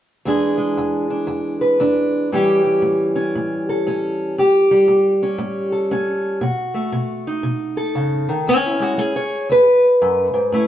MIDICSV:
0, 0, Header, 1, 2, 480
1, 0, Start_track
1, 0, Tempo, 512821
1, 235, Time_signature, 4, 2, 24, 8
1, 9990, End_track
2, 0, Start_track
2, 0, Title_t, "Steel-string acoustic guitar"
2, 0, Program_c, 0, 25
2, 237, Note_on_c, 0, 40, 59
2, 242, Note_on_c, 0, 52, 47
2, 253, Note_on_c, 0, 56, 47
2, 258, Note_on_c, 0, 62, 49
2, 263, Note_on_c, 0, 68, 56
2, 529, Note_off_c, 0, 56, 0
2, 540, Note_on_c, 0, 56, 44
2, 682, Note_off_c, 0, 40, 0
2, 724, Note_on_c, 0, 40, 58
2, 1021, Note_off_c, 0, 62, 0
2, 1032, Note_on_c, 0, 62, 45
2, 1165, Note_off_c, 0, 40, 0
2, 1188, Note_on_c, 0, 40, 57
2, 1504, Note_off_c, 0, 68, 0
2, 1508, Note_on_c, 0, 71, 44
2, 1638, Note_off_c, 0, 40, 0
2, 1680, Note_off_c, 0, 62, 0
2, 1683, Note_on_c, 0, 40, 60
2, 1691, Note_on_c, 0, 62, 52
2, 2125, Note_off_c, 0, 40, 0
2, 2136, Note_off_c, 0, 56, 0
2, 2139, Note_off_c, 0, 71, 0
2, 2143, Note_off_c, 0, 62, 0
2, 2175, Note_on_c, 0, 45, 59
2, 2176, Note_off_c, 0, 52, 0
2, 2179, Note_on_c, 0, 52, 49
2, 2183, Note_on_c, 0, 55, 53
2, 2190, Note_on_c, 0, 61, 50
2, 2197, Note_on_c, 0, 67, 53
2, 2475, Note_off_c, 0, 55, 0
2, 2479, Note_on_c, 0, 55, 46
2, 2611, Note_off_c, 0, 45, 0
2, 2639, Note_on_c, 0, 45, 59
2, 2949, Note_off_c, 0, 61, 0
2, 2953, Note_on_c, 0, 61, 47
2, 3084, Note_off_c, 0, 45, 0
2, 3139, Note_on_c, 0, 45, 62
2, 3443, Note_off_c, 0, 67, 0
2, 3456, Note_on_c, 0, 69, 48
2, 3574, Note_off_c, 0, 45, 0
2, 3603, Note_off_c, 0, 61, 0
2, 3620, Note_on_c, 0, 45, 64
2, 3625, Note_on_c, 0, 61, 48
2, 4054, Note_off_c, 0, 45, 0
2, 4069, Note_off_c, 0, 52, 0
2, 4071, Note_off_c, 0, 61, 0
2, 4103, Note_on_c, 0, 45, 58
2, 4106, Note_off_c, 0, 69, 0
2, 4110, Note_on_c, 0, 67, 58
2, 4392, Note_off_c, 0, 55, 0
2, 4409, Note_on_c, 0, 55, 47
2, 4536, Note_off_c, 0, 45, 0
2, 4566, Note_on_c, 0, 45, 56
2, 4891, Note_on_c, 0, 61, 51
2, 5008, Note_off_c, 0, 45, 0
2, 5039, Note_on_c, 0, 45, 63
2, 5351, Note_off_c, 0, 67, 0
2, 5355, Note_on_c, 0, 69, 50
2, 5484, Note_off_c, 0, 45, 0
2, 5529, Note_off_c, 0, 61, 0
2, 5534, Note_on_c, 0, 45, 60
2, 5540, Note_on_c, 0, 61, 49
2, 5971, Note_off_c, 0, 45, 0
2, 5984, Note_off_c, 0, 69, 0
2, 5989, Note_off_c, 0, 61, 0
2, 6001, Note_on_c, 0, 47, 64
2, 6012, Note_off_c, 0, 55, 0
2, 6014, Note_on_c, 0, 66, 58
2, 6312, Note_on_c, 0, 57, 45
2, 6445, Note_off_c, 0, 47, 0
2, 6481, Note_on_c, 0, 47, 61
2, 6807, Note_on_c, 0, 63, 49
2, 6925, Note_off_c, 0, 47, 0
2, 6956, Note_on_c, 0, 47, 61
2, 7269, Note_off_c, 0, 66, 0
2, 7273, Note_on_c, 0, 69, 48
2, 7402, Note_off_c, 0, 47, 0
2, 7441, Note_on_c, 0, 49, 51
2, 7745, Note_off_c, 0, 49, 0
2, 7756, Note_on_c, 0, 51, 54
2, 7901, Note_off_c, 0, 57, 0
2, 7901, Note_off_c, 0, 69, 0
2, 7908, Note_off_c, 0, 63, 0
2, 7924, Note_off_c, 0, 51, 0
2, 7930, Note_on_c, 0, 40, 66
2, 7944, Note_on_c, 0, 61, 88
2, 8103, Note_on_c, 0, 64, 72
2, 8236, Note_on_c, 0, 56, 40
2, 8255, Note_on_c, 0, 66, 75
2, 8368, Note_off_c, 0, 40, 0
2, 8391, Note_off_c, 0, 56, 0
2, 8402, Note_on_c, 0, 56, 53
2, 8411, Note_off_c, 0, 66, 0
2, 8411, Note_on_c, 0, 68, 69
2, 8569, Note_off_c, 0, 64, 0
2, 8570, Note_off_c, 0, 61, 0
2, 8573, Note_on_c, 0, 73, 67
2, 8844, Note_off_c, 0, 56, 0
2, 8884, Note_off_c, 0, 73, 0
2, 8887, Note_on_c, 0, 40, 56
2, 8908, Note_on_c, 0, 71, 89
2, 9043, Note_off_c, 0, 68, 0
2, 9325, Note_off_c, 0, 40, 0
2, 9375, Note_on_c, 0, 42, 59
2, 9669, Note_off_c, 0, 42, 0
2, 9675, Note_on_c, 0, 44, 56
2, 9841, Note_off_c, 0, 44, 0
2, 9850, Note_on_c, 0, 45, 65
2, 9859, Note_on_c, 0, 57, 47
2, 9862, Note_on_c, 0, 61, 46
2, 9872, Note_on_c, 0, 64, 46
2, 9990, Note_off_c, 0, 45, 0
2, 9990, Note_off_c, 0, 57, 0
2, 9990, Note_off_c, 0, 61, 0
2, 9990, Note_off_c, 0, 64, 0
2, 9990, Note_off_c, 0, 71, 0
2, 9990, End_track
0, 0, End_of_file